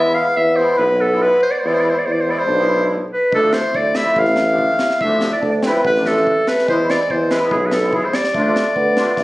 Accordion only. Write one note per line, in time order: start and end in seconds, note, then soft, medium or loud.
0.00 0.25 G#3 medium
0.00 0.26 B3 medium
0.00 0.26 E4 medium
0.57 0.84 G#3 medium
0.57 0.84 B3 medium
0.57 0.84 E4 medium
1.11 1.38 G#3 medium
1.11 1.37 B3 medium
1.11 1.38 E4 medium
1.62 1.95 G#3 medium
1.62 1.95 B3 medium
1.62 1.96 E4 medium
2.26 2.43 G#3 medium
2.26 2.43 B3 medium
2.26 2.43 E4 medium
2.56 2.95 G#3 medium
2.56 2.95 B3 medium
2.56 2.95 E4 medium
3.32 3.64 F3 medium
3.32 3.65 A3 medium
3.32 3.65 D4 medium
3.96 4.22 F3 medium
3.96 4.23 A3 medium
3.96 4.23 E4 medium
4.50 4.75 F3 medium
4.50 4.76 A3 medium
4.50 4.77 D4 medium
5.03 5.34 F3 medium
5.03 5.34 A3 medium
5.03 5.34 D4 medium
5.65 5.80 F3 medium
5.65 5.81 A3 medium
5.65 5.81 E4 loud
5.95 6.32 F3 medium
5.95 6.32 A3 medium
5.95 6.33 D4 medium
6.68 7.00 G#3 medium
6.68 7.00 B3 medium
6.68 7.00 E4 medium
7.28 7.56 G#3 medium
7.28 7.56 B3 medium
7.28 7.56 E4 medium
7.82 8.08 G#3 medium
7.82 8.09 B3 medium
7.82 8.09 E4 medium
8.35 8.66 A3 medium
8.35 8.66 D4 medium
8.35 8.67 F4 medium
8.96 9.12 A3 loud
8.96 9.12 D4 medium
8.96 9.13 F4 medium